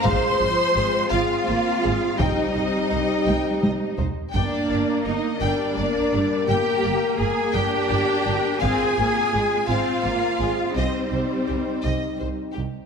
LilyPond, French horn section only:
\new Staff \with { instrumentName = "French horn section" } { \time 6/8 \key g \phrygian \tempo 4. = 56 << { f'2. | g'2~ g'8 r8 | bes'2.~ | bes'2. |
f'2. | ees'2~ ees'8 r8 | } \\ { c'2.~ | c'2~ c'8 r8 | bes2.~ | bes2. |
c'2.~ | c'2~ c'8 r8 | } >> }